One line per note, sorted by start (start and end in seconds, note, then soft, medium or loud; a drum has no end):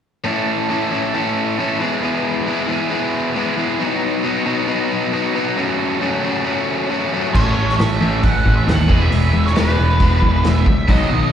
0.24 0.68 A2 medium
0.24 0.69 E3 medium
0.24 0.69 A3 medium
0.24 0.70 C#4 medium
0.24 0.71 E4 loud
0.24 0.71 A4 medium
0.69 0.89 A2 medium
0.69 0.90 E3 medium
0.69 0.90 A3 medium
0.69 0.91 C#4 medium
0.69 0.92 E4 medium
0.69 0.94 A4 medium
0.90 1.12 A2 medium
0.90 1.13 E3 medium
0.90 1.13 A3 medium
0.90 1.13 C#4 medium
0.90 1.14 E4 medium
0.95 1.15 A4 medium
1.13 1.56 A2 medium
1.13 1.58 E3 medium
1.13 1.58 A3 medium
1.13 1.59 C#4 medium
1.13 1.59 E4 medium
1.13 1.58 A4 loud
1.58 1.79 A2 medium
1.58 1.78 E3 medium
1.58 1.80 A3 medium
1.58 1.80 C#4 medium
1.58 1.80 E4 medium
1.58 1.80 A4 medium
1.79 2.01 E2 medium
1.79 2.02 B2 medium
1.79 2.01 E3 medium
1.79 2.02 G#3 medium
1.79 2.03 B3 medium
1.79 2.03 E4 loud
1.79 2.04 G#4 loud
2.02 2.46 E2 medium
2.02 2.46 B2 medium
2.02 2.45 E3 medium
2.02 2.46 G#3 medium
2.02 2.47 B3 medium
2.02 2.47 E4 medium
2.02 2.48 G#4 medium
2.46 2.68 E2 medium
2.46 2.69 B2 medium
2.46 2.66 E3 medium
2.46 2.67 G#3 medium
2.46 2.69 B3 medium
2.46 2.68 E4 medium
2.46 2.71 G#4 medium
2.68 2.89 E2 medium
2.68 2.90 B2 medium
2.68 2.89 E3 medium
2.68 2.89 G#3 medium
2.68 2.90 B3 medium
2.68 2.90 E4 medium
2.72 2.91 G#4 medium
2.90 3.35 E2 medium
2.90 3.36 B2 medium
2.90 3.33 E3 medium
2.90 3.35 G#3 medium
2.90 3.35 B3 medium
2.90 3.36 E4 medium
2.90 3.37 G#4 loud
3.35 3.56 E2 medium
3.35 3.57 B2 medium
3.35 3.56 E3 medium
3.35 3.56 G#3 medium
3.35 3.57 B3 medium
3.35 3.58 E4 medium
3.35 3.58 G#4 medium
3.57 3.79 E2 medium
3.57 3.79 B2 medium
3.57 3.78 E3 medium
3.57 3.79 G#3 medium
3.57 3.79 B3 medium
3.57 3.80 E4 medium
3.57 3.80 G#4 medium
3.79 4.22 B2 medium
3.79 4.23 F#3 medium
3.79 4.23 B3 medium
3.79 4.23 D#4 loud
3.79 4.26 F#4 medium
4.23 4.44 B2 medium
4.23 4.45 F#3 medium
4.23 4.45 B3 medium
4.23 4.45 D#4 medium
4.23 4.47 F#4 medium
4.45 4.66 B2 medium
4.45 4.66 F#3 medium
4.45 4.67 B3 medium
4.45 4.68 D#4 medium
4.45 4.69 F#4 medium
4.67 5.11 B2 medium
4.67 5.12 F#3 medium
4.67 5.13 B3 medium
4.67 5.13 D#4 medium
4.67 5.12 F#4 loud
5.13 5.33 B2 medium
5.13 5.34 F#3 medium
5.13 5.34 B3 medium
5.13 5.35 D#4 medium
5.13 5.34 F#4 medium
5.34 5.56 B2 medium
5.34 5.56 F#3 medium
5.34 5.56 B3 medium
5.34 5.57 D#4 medium
5.34 5.56 F#4 medium
5.57 5.99 F#2 medium
5.57 6.00 C#3 medium
5.57 6.01 F#3 loud
5.57 6.01 A3 medium
5.57 6.02 C#4 loud
5.57 6.01 F#4 medium
6.00 6.22 F#2 medium
6.00 6.22 C#3 medium
6.00 6.23 F#3 medium
6.00 6.23 A3 medium
6.00 6.24 C#4 loud
6.00 6.24 F#4 medium
6.23 6.42 F#2 medium
6.23 6.43 C#3 medium
6.23 6.44 F#3 medium
6.23 6.44 A3 medium
6.23 6.45 C#4 medium
6.23 6.45 F#4 medium
6.44 6.88 F#2 medium
6.44 6.89 C#3 medium
6.44 6.89 F#3 medium
6.44 6.89 A3 medium
6.44 6.90 C#4 medium
6.44 6.91 F#4 loud
6.89 7.10 F#2 medium
6.89 7.11 C#3 medium
6.89 7.12 F#3 medium
6.89 7.12 A3 medium
6.89 7.13 C#4 medium
6.89 7.13 F#4 medium
7.11 7.33 F#2 medium
7.11 7.34 C#3 medium
7.11 7.34 F#3 medium
7.11 7.34 A3 medium
7.11 7.34 C#4 medium
7.11 7.34 F#4 medium
7.34 7.55 A1 medium
7.34 7.56 A2 medium
7.34 7.56 E3 medium
7.34 7.56 A3 medium
7.34 8.89 C#4 medium
7.34 8.89 A4 medium
7.34 7.80 C#5 medium
7.34 kick loud
7.34 crash medium
7.57 7.77 A1 medium
7.57 7.77 A2 medium
7.57 7.77 E3 medium
7.69 snare soft
7.79 8.00 A1 medium
7.79 7.99 A2 medium
7.79 7.99 E3 medium
7.79 8.23 E5 medium
7.79 snare loud
7.79 open hi-hat soft
8.00 8.22 A1 medium
8.00 8.22 A2 medium
8.00 8.22 E3 medium
8.00 8.22 A3 medium
8.23 8.44 A1 medium
8.23 8.43 A2 medium
8.23 8.43 E3 medium
8.23 8.56 F#5 medium
8.23 kick loud
8.23 open hi-hat soft
8.45 8.66 A1 medium
8.45 8.65 A2 medium
8.45 8.65 E3 medium
8.45 kick medium
8.56 8.68 E5 medium
8.67 8.88 D#2 medium
8.67 8.87 A2 medium
8.67 8.87 E3 medium
8.67 9.02 F#5 medium
8.67 snare loud
8.67 open hi-hat soft
8.88 9.10 E1 medium
8.88 10.65 E2 medium
8.88 10.65 B2 medium
8.88 9.10 E3 medium
8.88 9.10 G#3 medium
8.88 9.10 B3 medium
8.88 10.66 G#4 loud
8.88 kick loud
9.02 9.43 E5 medium
9.11 9.32 E1 medium
9.11 9.31 E3 medium
9.11 9.31 G#3 medium
9.11 open hi-hat soft
9.33 9.55 E1 medium
9.33 9.54 E3 medium
9.33 9.54 G#3 medium
9.46 9.57 C#5 medium
9.46 snare soft
9.55 9.77 E1 medium
9.55 9.76 E3 medium
9.55 9.77 G#3 medium
9.55 9.77 B3 loud
9.55 10.48 B4 medium
9.55 snare medium
9.55 open hi-hat soft
9.77 9.99 E1 medium
9.77 9.98 E3 medium
9.77 9.98 G#3 medium
10.00 10.20 E1 medium
10.00 10.21 E3 medium
10.00 10.21 G#3 medium
10.00 10.21 B3 medium
10.00 kick loud
10.00 open hi-hat soft
10.22 10.43 E1 medium
10.22 10.42 E3 medium
10.22 10.42 G#3 medium
10.22 kick medium
10.44 10.65 E1 medium
10.44 10.64 E3 medium
10.44 10.64 G#3 medium
10.44 10.86 E5 medium
10.44 snare medium
10.44 open hi-hat soft
10.66 10.87 C#2 medium
10.66 10.86 E3 medium
10.66 10.87 G#3 medium
10.66 kick medium
10.88 11.09 B1 medium
10.88 11.09 B2 medium
10.88 11.09 D#3 medium
10.88 11.09 F#3 medium
10.88 11.32 B3 medium
10.88 11.32 D#4 medium
10.88 11.32 F#4 medium
10.88 11.30 D#5 medium
10.88 kick loud
10.88 open hi-hat soft
11.11 11.32 B1 medium
11.11 11.31 B2 medium
11.11 11.31 D#3 medium